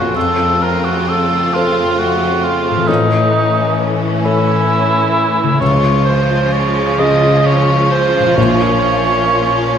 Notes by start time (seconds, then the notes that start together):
Already playing: A#1 F2 A#2 C#3 A#3 C#4 F4 F#4 A#4 C#5
0.02 C4
0.07 A4
0.11 C5
0.15 F2 A3 C4 F4 A4
0.63 A#4
0.84 F#4
1.08 A4
1.53 F4 A4 C5
1.98 F#4
2.43 F4
2.71 A2
2.76 E3
2.80 A4
2.84 C#4 D#4
2.89 A2 E3
4.24 E4 A4 C#5
5.43 C#3
5.47 F4
5.52 G#4
5.57 F3 G#3 C#5 F5
5.61 C#2 C#3 F4
6.05 C5
6.52 C#5
6.99 C#4 G#4 D#5
7.46 C#5
7.91 C5
8.20 A#2
8.24 F4
8.29 A#4
8.33 A#1 C#5
8.38 A#2 A#3 C#4